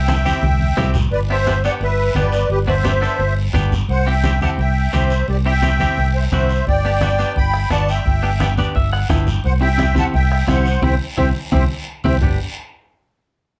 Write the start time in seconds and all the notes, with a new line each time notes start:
Already playing: C2 E5 G5
0.08 C4 E4 A4, bombo rim, high conga, short guiro
0.25 C4 E4 G4, high conga, short guiro
0.43 C2, bombo low, high conga, long guiro
0.60 high conga
0.77 C2 C4 E4 G4, bombo low, bombo rim, low conga, short guiro
0.94 low conga, short guiro
1.11 G1 B4 D5, high conga, long guiro
1.30 B3 D4 G4 C5 E5
1.47 B3 D4 G4, high conga, short guiro
1.64 B3 D4 G4 D5 F#5, short guiro
1.80 G1 B4 E5, high conga, long guiro
2.15 G1 B3 D4 G4 B4 D5, high conga, short guiro
2.32 short guiro
2.50 G1 G4 B4, high conga, long guiro
2.67 B3 D4 F#4 C5 E5, high conga
2.84 B3 D4 G4, high conga, short guiro
3.01 B3 D4 A4, short guiro
3.19 G1, high conga, long guiro
3.54 G1 B3 D4 G4, high conga, low conga, short guiro
3.72 low conga, short guiro
3.89 C2 C5 F#5, high conga, long guiro
4.07 C4 E4 G4 E5 G5
4.24 C4 E4 G4, high conga, short guiro
4.41 C4 E4 G4 F#5 A5, high conga, short guiro
4.58 C2 E5 G5, high conga, long guiro
4.93 C2 C4 E4 G4 C5 E5, high conga, short guiro
5.10 short guiro
5.28 C2 G4 D5, high conga, long guiro
5.46 C4 E4 G4 E5 G5
5.62 C4 E4 G4, high conga, short guiro
5.80 C4 E4 G4, high conga, short guiro
5.97 C2, high conga, long guiro
6.15 C5 E5
6.32 C2 C4 E4 F#4 C5 E5, high conga, low conga, short guiro
6.49 short guiro
6.66 G1 D5 G5, bombo low, high conga, long guiro
6.85 B3 D4 G4
7.01 B3 D4 F#4, bombo rim, high conga, short guiro
7.19 B3 D4 G4, short guiro
7.36 G1 G5 B5, bombo low, high conga, long guiro
7.54 bombo rim
7.70 G1 B3 D4 F#4 D5 A5, bombo rim, high conga, short guiro
7.88 E5 G5, short guiro
8.05 G1, bombo low, high conga, long guiro
8.23 B3 D4 G4
8.40 B3 D4 G4, bombo rim, high conga, short guiro
8.58 B3 D4 G4 D5, high conga, short guiro
8.75 G1 E5, bombo low, high conga, long guiro
8.93 F#5, bombo rim
9.09 G1 B3 D4 E4 G5, bombo low, bombo rim, high conga, low conga, short guiro
9.27 low conga, short guiro
9.44 C2 C5 F#5, bombo low, high conga, long guiro
9.61 C4 E4 G4 E5 G5
9.78 C4 E4 G4, bombo rim, high conga, short guiro
9.95 C4 E4 G4 F#5 A5, high conga, short guiro
10.13 C2 E5 G5, bombo low, high conga, long guiro
10.32 bombo rim
10.47 C2 C4 E4 G4 C5 F#5, bombo rim, high conga, short guiro
10.66 short guiro
10.82 C2 C4 E4 G4 C5 E5 G5, bombo low, high conga, long guiro
11.17 C2 C4 E4 G4 C5 E5 G5, bombo low, high conga, long guiro
11.52 C2 C4 E4 G4 C5 E5 G5, bombo low, high conga, long guiro
12.04 C2 C4 E4 G4 C5 E5 G5, bombo low, high conga, long guiro
12.21 G1 B3 D4 G4, bombo low, low conga, long guiro